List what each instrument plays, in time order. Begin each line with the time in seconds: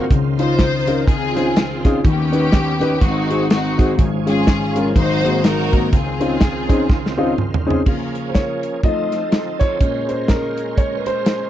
0.11 grand piano C#2 C#3, tonewheel organ C#3 D#3 C4 F4, kick, closed hi-hat
0.38 grand piano C#4 D#4 F4 C5, string section D#4 F4 C5, closed hi-hat
0.59 kick, snare, closed hi-hat
0.87 grand piano C#4 D#4 F4 A#4, closed hi-hat
1.08 string section C4 F4 G#4, kick, closed hi-hat
1.36 grand piano C#4 D#4 F4 C5, snare, closed hi-hat
1.56 snare, closed hi-hat
1.85 grand piano C#4 D#4 F4 G#4, kick, snare, closed hi-hat
2.04 grand piano D#2 D#3, tonewheel organ D#3 B3 C#4 G4, string section B3 C#4 G4, kick, closed hi-hat
2.32 grand piano C#4 D#4 G4 B4, closed hi-hat
2.52 kick, snare, closed hi-hat
2.80 grand piano C#4 D#4 G4 B4, closed hi-hat
3.01 grand piano G#1 G#2, tonewheel organ D#3 G#3 C4 F#4, string section C4 D#4 F#4, kick, closed hi-hat
3.30 grand piano C4 D#4 F#4 G#4, closed hi-hat
3.50 string section C4 D#4 F#4, snare, closed hi-hat
3.78 grand piano C4 D#4 F#4 G#4, kick, snare, closed hi-hat
3.98 grand piano G#1 G#2, tonewheel organ G#2 F3 G#3 C#4 G#4, kick, closed hi-hat
4.26 grand piano G#3 C#4 F4 G#4, string section C#4 F4 G#4, closed hi-hat
4.47 kick, snare, closed hi-hat
4.75 grand piano G#3 C#4 F4 A#4, closed hi-hat
4.95 grand piano G#1 G#2, tonewheel organ F#3 A#3 C4 G#4, string section D#4 F#4 C5, kick, closed hi-hat
5.23 grand piano A#3 C4 F#4 G#4, snare, closed hi-hat
5.44 string section D#4 F#4 A#4, snare, closed hi-hat
5.72 grand piano A#3 C4 F#4 A#4, kick, closed hi-hat
5.92 grand piano C#2 C#3, tonewheel organ C#3 D#3 C4 F4, string section C4 F4 G#4, kick, closed hi-hat
6.20 grand piano C4 C#4 D#4 F4, closed hi-hat
6.41 kick, snare, closed hi-hat
6.69 grand piano C4 C#4 D#4 G#4, kick, closed hi-hat
6.90 kick, snare
7.06 snare
7.17 grand piano C4 C#4 D#4 F4
7.38 mid tom
7.54 floor tom
7.66 grand piano C4 C#4 D#4 G#4, floor tom
7.86 grand piano C#3 A#3 F4, tonewheel organ F3 A#3 C#4 G#4, french horn section C#4 F4 G#4 A#4, kick, crash
8.15 closed hi-hat
8.29 grand piano C5
8.34 grand piano C#5, kick, snare, closed hi-hat
8.63 closed hi-hat
8.83 grand piano F3 A3 D#4 D#5, tonewheel organ F3 C4 D#4 A4, french horn section D#4 A4 D#5, kick, closed hi-hat
9.12 snare, closed hi-hat
9.32 snare, closed hi-hat
9.59 grand piano C#5, kick, snare, closed hi-hat
9.79 grand piano A#2 G#3 C#4, tonewheel organ G#3 C#4 A#4 C5, french horn section C#4 G#4 A#4, kick, closed hi-hat
10.09 grand piano C5, closed hi-hat
10.28 grand piano A#4, kick, snare, closed hi-hat
10.58 closed hi-hat
10.78 grand piano C#5, kick, closed hi-hat
10.97 grand piano B4
11.06 grand piano C5, closed hi-hat
11.26 snare, closed hi-hat